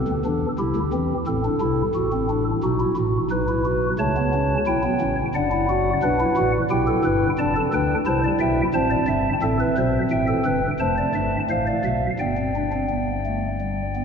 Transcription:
pipe organ
Already playing: C4 A4
0.08 D2 D3
0.25 E2 E3 D4
0.59 C2 C3 E4 G4
0.76 D2 D3
0.93 E2 E3 C4
1.27 A1 A2 C4 A4
1.44 D4
1.61 C2 C3 E4
1.95 A1 A2 F#4
2.13 C4
2.29 D4
2.63 B1 B2 D#4 F#4
2.80 E4
2.97 A1 A2 F#4
3.31 B1 B2 D#4 B4
3.48 E4
3.65 F#4
3.99 C#2 C#3 A3 C#5 A5
4.16 B3
4.34 C#4
4.67 B1 B2 E4 G5
4.83 B3
5.00 A1 A2 C#4
5.35 F#1 F#2 D4 D5 F#5
5.52 E4
5.69 F#4
6.03 B1 B2 D4 B4
6.20 E4
6.37 A1 A2 F#4
6.71 B1 B2 E4 G4 G5
6.87 A4
7.05 G1 G2 B4
7.39 F1 F2 D4 D5 A5
7.56 A4
7.73 D2 D3 D4 B4 G5
8.06 C2 C3 E4 C5 A5
8.24 D5
8.40 B1 B2 E5 G5
8.74 A1 A2 C4 C5 A5
8.91 D5
9.08 G1 G2 E5
9.42 A1 A2 C4 A4 E5
9.60 B4
9.78 B1 B2 C5
10.11 A1 A2 E5 G5
10.28 A4
10.45 G1 G2 B4
10.80 F1 F2 A3 C5 A5
10.98 D5
11.15 G1 G2 E5
11.50 A1 A2 C5 F5
11.67 D5
11.85 B1 B2 E5
12.19 G1 G2 B3 D5 G5
12.37 C4
12.55 D4
12.72 C4
12.89 B3
13.26 A3
13.60 G3
13.95 B3

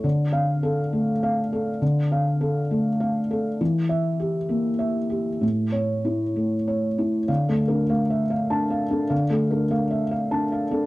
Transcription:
felt piano
0.04 D3
0.32 F5
0.63 A4
0.93 A3
1.23 F5
1.53 A4
1.82 D3
2.12 F5
2.41 A4
2.71 A3
3.00 F5
3.31 A4
3.61 E3
3.89 E5
4.20 G4
4.49 A#3
4.79 E5
5.10 G4
5.41 A2
5.72 C#5
6.05 E4
6.36 A3
6.68 C#5
6.98 E4
7.28 D3 F5
7.49 A3 A4
7.68 D4 A#4
7.89 A3 F5
8.10 E5
8.30 F5
8.50 D4 A5
8.70 F5
8.90 D4 A4
9.10 D3 F5
9.30 A3 A4
9.51 D4 A#4
9.71 A3 F5
9.91 E5
10.11 F5
10.31 D4 A5
10.52 F5
10.71 D4 A4

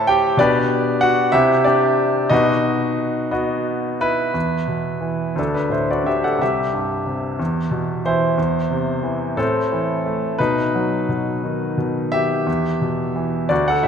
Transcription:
grand piano
Already playing: A2 A4 C5 E5 A5
0.07 G4 G5
0.37 B2 D4 G4 B4 D5
1.01 F#4 F#5
1.32 C3 E4 G4 E5
1.64 D4 G4 D5
2.30 B2 D#4 F#4 B4 D#5
3.31 B3 F#4 D#5
4.01 E4 B4
4.34 E2
4.68 B2
5.01 E3
5.36 D2 D4 A4
5.54 D4 B4
5.70 A2 E4 C5
5.91 F#4 D5
6.04 D3 G4 E5
6.24 A4 F#5
6.39 C2 G4 E5
6.73 G2
7.06 C3
7.39 E2
7.71 B2
8.05 E3 E4 C5
8.38 E2
8.71 C3
9.03 E3
9.37 A2 C4 A4
9.72 E3
10.06 A3
10.38 B2 D#4 B4
10.75 F#3
11.09 B2
11.44 D#3
11.78 B2
12.12 G4 E5
12.46 E2
12.81 B2
13.16 E3
13.49 D2 F#4 D5
13.68 A4 F#5
13.83 A2 E5

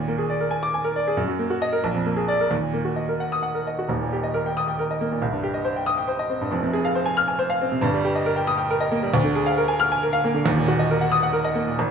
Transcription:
grand piano
Already playing: D#2
0.00 A#2
0.08 A#3
0.18 G#4
0.30 D5
0.41 A#4
0.51 G#5
0.63 D6
0.74 G#5
0.84 A#4
0.96 D5
1.08 G#4
1.17 F#2
1.28 F#3
1.39 A#3
1.50 F#4
1.62 D#5
1.73 A#4
1.84 A#1
1.94 F2
2.06 A#3
2.17 G#4
2.28 D5
2.41 A#4
2.51 D#2
2.62 A#2
2.73 A#3
2.85 F#4
2.96 D#5
3.09 A#4
3.20 F#5
3.32 D#6
3.43 F#5
3.55 A#4
3.67 D#5
3.79 F#4
3.89 D#1 D#2
4.01 A#2
4.13 G4
4.24 D#5
4.34 A#4
4.46 G5
4.57 D#6
4.68 G5
4.79 A#4
4.91 D#5
5.01 A#3
5.12 A#2
5.22 C2
5.33 G2
5.43 G4
5.54 D#5
5.65 C5
5.76 G5
5.86 D#6
5.98 G5
6.08 C5
6.19 D#5
6.30 C4
6.41 G2
6.51 F1 F2
6.63 C3
6.73 G#4
6.85 F5
6.95 C5
7.06 G#5
7.17 F6
7.28 G#5
7.39 C5
7.50 F5
7.61 C4
7.72 C3
7.81 G1 G2
7.94 G3
8.04 G4
8.15 D#5
8.26 A#4
8.36 G5
8.47 D#6
8.58 G5
8.71 A#4
8.80 D#5
8.91 A#3
9.03 G3
9.14 D2
9.24 D3
9.35 G#4
9.46 F5
9.58 A#4
9.68 G#5
9.80 F6
9.92 G#5
10.03 A#4
10.13 F5
10.24 A#3
10.34 D3
10.45 D#1 D#2
10.57 A#2
10.68 F#4
10.79 D#5
10.91 A#4
11.01 F#5
11.12 D#6
11.23 F#5
11.33 A#4
11.45 D#5
11.55 A#3
11.67 A#2
11.79 G#1

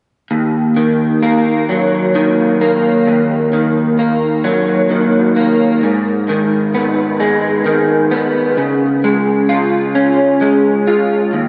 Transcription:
clean electric guitar
0.31 D#2
0.77 D#3
1.23 A#3
1.69 F#3
2.15 D#3
2.61 A#3
3.07 D#2
3.53 D#3
3.99 A#3
4.44 F#3
4.90 D#3
5.36 A#3
5.83 G#2
6.29 D#3
6.74 B3
7.20 G#3
7.66 D#3
8.11 B3
8.57 C#3
9.04 G#3
9.49 F4
9.95 C#4
10.41 G#3
10.87 F4
11.33 D#2

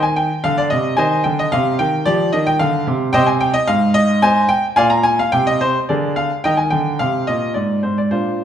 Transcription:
grand piano
Already playing: D#3
0.03 G#5
0.16 G5
0.44 D3 F5
0.58 D5
0.70 C3 D#5
0.97 D#3 C5 D#5 G#5
1.24 D3 G5
1.39 D#5
1.52 C3 F5
1.79 D#3 G5
2.06 F3 G4 D5
2.33 D#3 D#5
2.47 G5
2.59 D3 F5
2.87 C3
3.13 C3 C5 D#5 G5
3.27 G#5
3.41 G5
3.54 D#5
3.68 G#2 F5
3.94 D#5
4.22 C5 D#5 G#5
4.49 G5
4.76 A#2 D5 F5 G#5
4.90 A#5
5.03 G#5
5.19 F5
5.32 C3 G5
5.47 D#5
5.61 C5
5.89 D3 G#4 A#4 D5
6.16 F5
6.44 D#3 A#4 D#5 G5
6.57 G#5
6.70 D3 G5
6.99 C3 F5
7.27 A#2 D#5
7.54 G#2 D5
7.83 G#2 C5
7.98 D5
8.11 A#2 D4 F4 C5

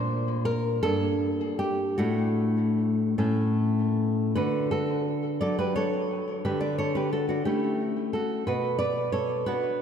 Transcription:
nylon-string guitar
Already playing: A#2 A#3 D4 C5
0.45 A#4
0.83 G2 A#3 D4 A4
1.59 G4
1.98 A2 A3 D4 F#4
3.18 A2 A3 C#4
4.36 D3 F#4 B4
4.71 F#4 A4
5.41 F#3 D4 A4 D5
5.59 G4 B4
5.76 A4 C#5
6.45 D3 G4 B4
6.61 B4 D5
6.78 A4 C#5
6.95 G4 B4
7.13 F#4 A4
7.29 D4 F#4
7.45 A3 C#4 E4 G4
8.13 F#4 A4
8.47 B2 F#4 B4
8.79 B4 D5
9.12 A4 C#5
9.46 B3 D4 F#4 B4

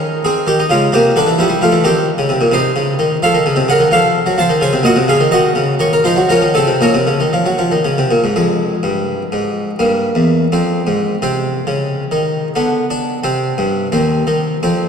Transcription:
harpsichord
Already playing: D#3 C#4 A#4
0.25 C4 G#4
0.47 D#3 G4
0.60 D#4
0.70 C#3 G#3 F4
0.93 C3 A#3 G4
1.16 D3 D4 B4
1.27 E3
1.38 F3 G3 E4
1.49 G3
1.62 F3 A3 F4
1.72 E3
1.84 D#3 C4 G4
2.18 C#3
2.29 C3
2.41 A#2
2.52 C3 D#4 C5
2.76 C#3
2.99 D#3
3.23 F3 A4 F5
3.34 D#3
3.46 C#3
3.56 C3
3.68 C#3 A#4 F#5
3.80 D#3
3.91 F3 A4 F5
4.26 F#3
4.38 F3 C5 A5
4.49 D#3
4.61 C#3 C5 G#5
4.73 C3
4.83 A#2 F#4 D#5
4.96 C3
5.08 C#3 G#4 F5
5.20 D#3
5.31 D#3 F#4 D#5
5.55 C#3
5.79 D#3 C#5
5.93 A#4
6.04 F3 D#4 C5
6.16 F#3
6.29 F3 C#4 A#4
6.42 D#3
6.54 C#3 C4 A4
6.67 C3
6.81 A#2 C#4 A#4
6.94 C3
7.07 C#3
7.20 D#3
7.33 F3
7.46 F#3
7.58 F3
7.71 D#3
7.85 C#3
7.98 C3
8.11 A#2
8.24 G#2
8.36 F2 G#3
8.83 G2
9.32 G#2
9.79 G2 A#3
10.15 E2
10.52 F2 C4
10.87 G#2
11.22 C3 C4
11.67 C#3
12.12 D#3
12.56 D3 B3
12.91 D4
13.24 C3 C4
13.58 G2
13.92 D#2 C4
14.27 D#3
14.63 F2 C4

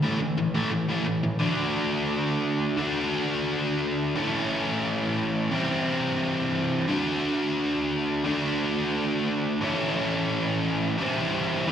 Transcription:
overdriven electric guitar
0.02 A2 E3 A3
0.20 A2 E3
0.37 A2 E3
0.54 A2 E3 A3
0.71 A2 E3
0.89 A2 E3 A3
1.06 A2 E3
1.23 A2 E3
1.39 D3 A3 D4 F#4
2.77 D3 A3 D4 F#4
4.15 A2 E3 A3 C#4 E4
5.51 C3 E3 G3 C4 E4
6.88 D3 A3 D4 F#4
8.24 D3 A3 D4 F#4
9.61 A2 E3 A3 C#4 E4
10.98 C3 E3 G3 C4 E4
11.68 E3

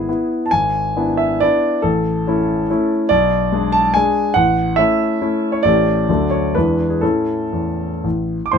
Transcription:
grand piano
Already playing: G#4
0.09 B3 E4
0.46 A5
0.51 G#1 G#5
0.96 B3 D4 E4
1.17 E5
1.40 B3 D4 E4 D5
1.82 A1 A4
2.27 A3 C#4 E4
2.70 A3 C#4 E4
3.09 B1 D5
3.52 G#3 D4 G#4
3.72 A5
3.94 G#3 D4 G#4 G#5
4.34 A1 F#5
4.76 A3 C#4 E4 E5
5.21 A3 C#4 E4
5.52 C#5
5.63 A1 A3 C#4 G4 D5
6.09 D2 F#3 D4 A4
6.31 C#5
6.55 E2 G#3 D4 E4 B4
6.90 G#4
7.01 A2 C#4 E4 A4
7.52 E2
8.04 A1
8.46 D6
8.52 A1 A2 C5 C6

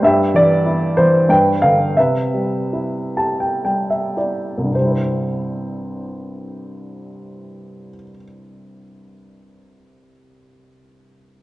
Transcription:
upright piano
0.03 G2 G4 E5
0.34 E3 D5
0.66 E4
0.97 E3 C5
1.29 G2 B4 G5
1.62 D3 F5
1.97 C3 B4 E5
2.34 G3
2.73 E4
3.17 G4 A5
3.40 G5
3.65 G3 G5
3.90 E5
4.17 E4 D5
4.58 C2
4.64 G2
4.71 C3 C5
4.77 G3
4.85 E4
4.92 C5

